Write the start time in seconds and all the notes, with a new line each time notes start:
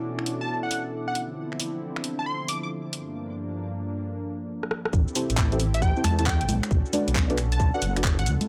Already playing: B2 B3 C#4 D4 E4 F#4 A4 D6
0.19 finger snap
0.26 open hi-hat
0.41 A5
0.63 F#5
0.71 open hi-hat
1.08 F#5
1.15 D3 F3 C4 D4 E4, open hi-hat
1.35 G4
1.51 C5, finger snap
1.60 open hi-hat
1.96 finger snap
2.04 open hi-hat
2.19 A5
2.26 C6
2.48 D6, open hi-hat
2.63 D6
2.93 G2 A#3 D4, open hi-hat
4.63 cross-stick
4.71 cross-stick
4.85 cross-stick
4.93 A1 C4 E4 G4 A4, kick, shaker
5.08 shaker
5.15 C4 E4 G4 A4 C5, open hi-hat, shaker
5.30 A1, closed hi-hat, shaker
5.37 kick, clap, shaker
5.52 C4 E4 G4 A4 C5, closed hi-hat, shaker
5.60 open hi-hat, shaker
5.74 E5, closed hi-hat, shaker
5.82 G5, kick, shaker
5.96 C4 E4 G4 A4 C5, shaker
6.04 E2 A5, finger snap, open hi-hat, high conga, shaker
6.19 C4 E4 G4 A4 C5 A5, closed hi-hat, shaker
6.26 G5, kick, clap, shaker
6.41 G1, closed hi-hat, shaker
6.49 B1 C#4 D4 F#4, open hi-hat, high conga, shaker
6.63 finger snap, closed hi-hat, shaker
6.71 B1, kick, shaker
6.86 shaker
6.93 D4 F#4 A4 B4 D5, open hi-hat, high conga, shaker
7.08 B1, closed hi-hat, shaker
7.15 kick, clap, shaker
7.30 D4 F#4 A4 B4 D5, closed hi-hat, shaker
7.38 finger snap, open hi-hat, shaker
7.52 A5, closed hi-hat, shaker
7.60 kick, shaker
7.74 D4 F#4 A4 B4 D5 F#5, shaker
7.82 F#1, open hi-hat, shaker
7.96 D4 F#4 A4 B4 D5, finger snap, closed hi-hat, shaker
8.04 kick, clap, shaker
8.19 A1 F#5, closed hi-hat, shaker
8.26 D2 C4 E4 F4, open hi-hat, shaker
8.41 closed hi-hat, high conga, shaker